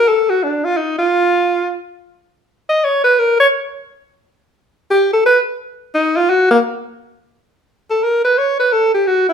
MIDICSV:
0, 0, Header, 1, 2, 480
1, 0, Start_track
1, 0, Tempo, 346220
1, 73, Time_signature, 3, 2, 24, 8
1, 12938, End_track
2, 0, Start_track
2, 0, Title_t, "Alto saxophone"
2, 0, Program_c, 0, 65
2, 108, Note_on_c, 0, 69, 81
2, 414, Note_on_c, 0, 66, 85
2, 435, Note_off_c, 0, 69, 0
2, 601, Note_on_c, 0, 62, 65
2, 622, Note_off_c, 0, 66, 0
2, 891, Note_on_c, 0, 65, 92
2, 912, Note_off_c, 0, 62, 0
2, 1066, Note_on_c, 0, 63, 67
2, 1087, Note_off_c, 0, 65, 0
2, 1347, Note_off_c, 0, 63, 0
2, 1362, Note_on_c, 0, 65, 89
2, 2428, Note_off_c, 0, 65, 0
2, 3729, Note_on_c, 0, 75, 82
2, 3938, Note_on_c, 0, 73, 78
2, 3959, Note_off_c, 0, 75, 0
2, 4204, Note_off_c, 0, 73, 0
2, 4212, Note_on_c, 0, 71, 89
2, 4414, Note_on_c, 0, 70, 85
2, 4435, Note_off_c, 0, 71, 0
2, 4698, Note_off_c, 0, 70, 0
2, 4713, Note_on_c, 0, 73, 94
2, 4812, Note_off_c, 0, 73, 0
2, 6800, Note_on_c, 0, 67, 84
2, 7070, Note_off_c, 0, 67, 0
2, 7113, Note_on_c, 0, 69, 82
2, 7266, Note_off_c, 0, 69, 0
2, 7292, Note_on_c, 0, 71, 88
2, 7463, Note_off_c, 0, 71, 0
2, 8240, Note_on_c, 0, 63, 93
2, 8545, Note_on_c, 0, 65, 90
2, 8566, Note_off_c, 0, 63, 0
2, 8729, Note_on_c, 0, 66, 93
2, 8750, Note_off_c, 0, 65, 0
2, 9015, Note_off_c, 0, 66, 0
2, 9022, Note_on_c, 0, 58, 86
2, 9124, Note_off_c, 0, 58, 0
2, 10953, Note_on_c, 0, 69, 74
2, 11138, Note_on_c, 0, 70, 82
2, 11158, Note_off_c, 0, 69, 0
2, 11422, Note_off_c, 0, 70, 0
2, 11431, Note_on_c, 0, 71, 81
2, 11620, Note_on_c, 0, 73, 77
2, 11641, Note_off_c, 0, 71, 0
2, 11904, Note_off_c, 0, 73, 0
2, 11915, Note_on_c, 0, 71, 82
2, 12092, Note_on_c, 0, 69, 81
2, 12113, Note_off_c, 0, 71, 0
2, 12381, Note_off_c, 0, 69, 0
2, 12397, Note_on_c, 0, 67, 79
2, 12571, Note_on_c, 0, 66, 87
2, 12591, Note_off_c, 0, 67, 0
2, 12861, Note_off_c, 0, 66, 0
2, 12875, Note_on_c, 0, 64, 78
2, 12938, Note_off_c, 0, 64, 0
2, 12938, End_track
0, 0, End_of_file